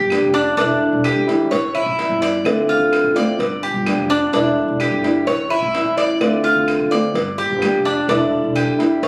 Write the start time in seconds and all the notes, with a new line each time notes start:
Already playing: G4
0.00 G1
0.10 F3 A#3 D4 G4, cowbell, claves
0.22 F1
0.34 D4
0.57 E1 D3 G3 D4 E4, cowbell
0.93 E1
1.04 G4, cowbell, claves
1.16 G#1
1.27 G3 D4 E4, cowbell
1.51 A1 C#5, muted nylon-string guitar stroke, cowbell
1.75 E4, claves
1.86 A1
1.98 E3 G3 C#4 E4, cowbell
2.10 G1
2.22 D5, cowbell
2.44 D2 D3 A3 C4 F4, cowbell, claves
2.69 F4
2.80 D2
2.93 cowbell, claves
3.04 A1
3.15 A3 C4 F4 D5, cowbell
3.38 G1, muted nylon-string guitar stroke, cowbell
3.63 G4
3.74 G1
3.86 F3 A#3 D4 G4, cowbell, claves
3.97 F1
4.10 D4
4.33 E1 D3 G3 D4 E4, cowbell
4.68 E1
4.80 G4, cowbell, claves
4.92 G1
5.03 G3 D4 E4, cowbell
5.26 A1 C#5, muted nylon-string guitar stroke, cowbell
5.50 E4, claves
5.62 A1
5.74 E3 G3 C#4 E4, cowbell
5.85 A1
5.97 D5, cowbell
6.20 D2 D3 A3 C4 F4, cowbell, claves
6.44 F4
6.56 D2
6.68 cowbell, claves
6.79 D3
6.90 A3 C4 F4 D5, cowbell
7.14 G1, muted nylon-string guitar stroke, cowbell
7.38 G4
7.50 G1
7.62 F3 A#3 D4 G4, cowbell, claves
7.73 F1
7.85 D4
8.08 E1 D3 G3 D4 E4, cowbell
8.44 E1
8.56 G4, cowbell, claves
8.68 E2
8.79 G3 D4 E4, cowbell
9.02 A1 C#5, muted nylon-string guitar stroke, cowbell